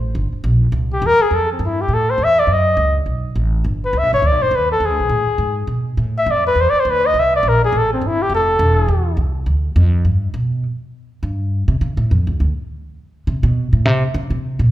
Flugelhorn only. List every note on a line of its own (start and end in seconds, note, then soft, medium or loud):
0.93 1.08 G4 loud
1.06 1.23 A#4 loud
1.22 1.36 G#4 loud
1.35 1.50 A4 medium
1.52 1.67 C4 soft
1.65 1.83 E4 medium
1.81 1.95 G4 medium
1.94 2.12 A4 medium
2.10 2.25 C5 loud
2.24 2.41 E5 loud
2.39 2.54 D5 loud
2.53 2.97 D#5 medium
3.85 4.00 B4 medium
3.98 4.13 E5 loud
4.14 4.28 C#5 loud
4.26 4.44 D5 medium
4.42 4.57 C5 loud
4.55 4.71 B4 medium
4.72 4.87 A4 medium
4.85 5.71 G#4 medium
6.18 6.32 E5 loud
6.31 6.46 D5 medium
6.47 6.62 B4 loud
6.61 6.71 C5 medium
6.70 6.81 D5 loud
6.80 6.92 C5 medium
6.90 7.08 B4 loud
7.06 7.21 D#5 loud
7.19 7.34 E5 loud
7.35 7.50 D5 loud
7.48 7.63 A#4 medium
7.65 7.79 G#4 medium
7.78 7.93 A4 loud
7.93 8.08 C4 medium
8.06 8.24 E4 loud
8.22 8.32 G4 medium
8.35 9.16 A4 medium